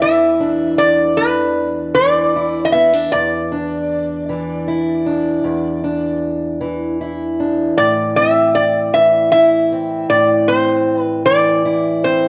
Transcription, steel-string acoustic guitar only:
0, 0, Header, 1, 2, 480
1, 0, Start_track
1, 0, Tempo, 775194
1, 1933, Time_signature, 12, 3, 24, 8
1, 7604, End_track
2, 0, Start_track
2, 0, Title_t, "Steel-string acoustic guitar"
2, 0, Program_c, 0, 25
2, 0, Note_on_c, 0, 40, 74
2, 0, Note_on_c, 0, 52, 60
2, 0, Note_on_c, 0, 62, 47
2, 12, Note_on_c, 0, 64, 60
2, 243, Note_off_c, 0, 62, 0
2, 250, Note_on_c, 0, 62, 58
2, 487, Note_off_c, 0, 40, 0
2, 489, Note_on_c, 0, 40, 66
2, 723, Note_off_c, 0, 62, 0
2, 730, Note_on_c, 0, 62, 52
2, 1208, Note_off_c, 0, 52, 0
2, 1211, Note_on_c, 0, 52, 64
2, 1458, Note_off_c, 0, 64, 0
2, 1461, Note_on_c, 0, 64, 60
2, 1691, Note_off_c, 0, 62, 0
2, 1696, Note_on_c, 0, 59, 57
2, 1816, Note_off_c, 0, 59, 0
2, 1816, Note_on_c, 0, 62, 49
2, 1901, Note_off_c, 0, 40, 0
2, 1934, Note_off_c, 0, 62, 0
2, 1940, Note_on_c, 0, 40, 74
2, 2178, Note_on_c, 0, 62, 61
2, 2197, Note_off_c, 0, 52, 0
2, 2197, Note_off_c, 0, 64, 0
2, 2657, Note_on_c, 0, 52, 60
2, 2897, Note_on_c, 0, 64, 59
2, 3128, Note_off_c, 0, 62, 0
2, 3135, Note_on_c, 0, 62, 60
2, 3360, Note_off_c, 0, 40, 0
2, 3368, Note_on_c, 0, 40, 71
2, 3608, Note_off_c, 0, 62, 0
2, 3615, Note_on_c, 0, 62, 56
2, 4088, Note_off_c, 0, 52, 0
2, 4091, Note_on_c, 0, 52, 63
2, 4337, Note_off_c, 0, 64, 0
2, 4339, Note_on_c, 0, 64, 64
2, 4572, Note_off_c, 0, 62, 0
2, 4581, Note_on_c, 0, 62, 53
2, 4780, Note_off_c, 0, 40, 0
2, 4787, Note_off_c, 0, 62, 0
2, 4819, Note_on_c, 0, 45, 73
2, 5066, Note_on_c, 0, 60, 61
2, 5536, Note_off_c, 0, 52, 0
2, 5539, Note_on_c, 0, 52, 60
2, 5780, Note_off_c, 0, 64, 0
2, 5782, Note_on_c, 0, 64, 59
2, 6013, Note_off_c, 0, 60, 0
2, 6020, Note_on_c, 0, 60, 55
2, 6246, Note_off_c, 0, 45, 0
2, 6253, Note_on_c, 0, 45, 68
2, 6491, Note_off_c, 0, 60, 0
2, 6499, Note_on_c, 0, 60, 52
2, 6965, Note_off_c, 0, 52, 0
2, 6968, Note_on_c, 0, 52, 63
2, 7213, Note_off_c, 0, 64, 0
2, 7215, Note_on_c, 0, 64, 64
2, 7447, Note_off_c, 0, 60, 0
2, 7454, Note_on_c, 0, 60, 55
2, 7604, Note_off_c, 0, 45, 0
2, 7604, Note_off_c, 0, 52, 0
2, 7604, Note_off_c, 0, 60, 0
2, 7604, Note_off_c, 0, 64, 0
2, 7604, End_track
0, 0, End_of_file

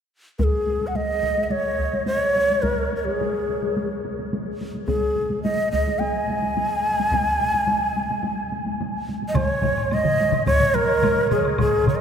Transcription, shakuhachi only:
0, 0, Header, 1, 2, 480
1, 0, Start_track
1, 0, Tempo, 560224
1, 334, Time_signature, 4, 2, 24, 8
1, 10288, End_track
2, 0, Start_track
2, 0, Title_t, "Shakuhachi"
2, 0, Program_c, 0, 77
2, 332, Note_on_c, 0, 70, 56
2, 373, Note_on_c, 0, 68, 61
2, 382, Note_off_c, 0, 70, 0
2, 746, Note_on_c, 0, 78, 41
2, 759, Note_off_c, 0, 68, 0
2, 821, Note_on_c, 0, 75, 68
2, 834, Note_off_c, 0, 78, 0
2, 1227, Note_off_c, 0, 75, 0
2, 1227, Note_on_c, 0, 75, 43
2, 1295, Note_on_c, 0, 73, 72
2, 1308, Note_off_c, 0, 75, 0
2, 1764, Note_off_c, 0, 73, 0
2, 1769, Note_on_c, 0, 73, 69
2, 2248, Note_on_c, 0, 70, 62
2, 2261, Note_off_c, 0, 73, 0
2, 2531, Note_off_c, 0, 70, 0
2, 2536, Note_on_c, 0, 70, 37
2, 2611, Note_on_c, 0, 68, 49
2, 2624, Note_off_c, 0, 70, 0
2, 3334, Note_off_c, 0, 68, 0
2, 4178, Note_on_c, 0, 68, 62
2, 4624, Note_off_c, 0, 68, 0
2, 4652, Note_on_c, 0, 75, 65
2, 4877, Note_off_c, 0, 75, 0
2, 4896, Note_on_c, 0, 75, 71
2, 5132, Note_on_c, 0, 80, 76
2, 5145, Note_off_c, 0, 75, 0
2, 7534, Note_off_c, 0, 80, 0
2, 7953, Note_on_c, 0, 75, 57
2, 8017, Note_on_c, 0, 73, 81
2, 8030, Note_off_c, 0, 75, 0
2, 8513, Note_on_c, 0, 75, 86
2, 8526, Note_off_c, 0, 73, 0
2, 8959, Note_off_c, 0, 75, 0
2, 8964, Note_on_c, 0, 73, 77
2, 9206, Note_on_c, 0, 70, 79
2, 9219, Note_off_c, 0, 73, 0
2, 9686, Note_off_c, 0, 70, 0
2, 9692, Note_on_c, 0, 68, 59
2, 9915, Note_off_c, 0, 68, 0
2, 9940, Note_on_c, 0, 68, 63
2, 10160, Note_off_c, 0, 68, 0
2, 10186, Note_on_c, 0, 73, 55
2, 10243, Note_on_c, 0, 75, 55
2, 10255, Note_off_c, 0, 73, 0
2, 10288, Note_off_c, 0, 75, 0
2, 10288, End_track
0, 0, End_of_file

